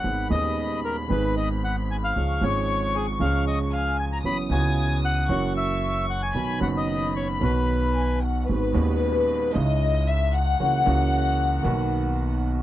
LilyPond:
<<
  \new Staff \with { instrumentName = "Violin section" } { \time 4/4 \key b \major \tempo 4 = 114 b''1 | cis'''2. gis''4 | dis'''2 cis'''2 | b''4 b''2 gis''8 fis''8 |
\key gis \minor b'2 dis''4 e''8 fis''8~ | fis''2.~ fis''8 r8 | }
  \new Staff \with { instrumentName = "Bandoneon" } { \time 4/4 \key b \major fis''8 dis''4 ais'8 b'8 dis''8 fis''8 gis''16 eis''16~ | eis''8 cis''4 gis'8 eis''8 dis''8 eis''8 gis''16 ais''16 | b''8 gis''4 fis''4 e''4 fis''16 gis''16~ | gis''8 fis''16 dis''8. cis''8 b'4. r8 |
\key gis \minor r1 | r1 | }
  \new Staff \with { instrumentName = "Upright piano" } { \clef bass \time 4/4 \key b \major <gis,, gis, dis gis b gis'>8 <dis,, dis, dis gis b gis'>4. <gis,, gis, dis gis b gis'>2 | <cis, cis eis gis cis' gis'>8 <gis,, gis, eis gis cis' gis'>4. <cis, cis eis gis cis' gis'>2 | <fis, e fis b cis' fis'>8 <cis, cis e b cis' fis'>4. <fis, e fis ais cis' fis'>2 | <b,, b, dis fis b fis'>8 <fis,, fis, dis fis b fis'>4. <b,, b, dis fis b fis'>2 |
\key gis \minor <gis,, gis, dis gis b fis'>8 <dis,, dis, dis gis b fis'>4. <cis, cis gis cis' dis' e'>2 | <cis, cis e ais cis' fis'>8 <cis, cis e ais cis' fis'>4. <b,, b, dis ais b fis'>2 | }
  \new Staff \with { instrumentName = "Upright bass" } { \clef bass \time 4/4 \key b \major gis,,8 dis,4. gis,,2 | cis,8 gis,,4. cis,2 | fis,,8 cis,4. fis,,2 | b,,8 fis,,4. b,,2 |
\key gis \minor gis,,8 dis,4. cis,2 | cis,8 cis,4. b,,2 | }
>>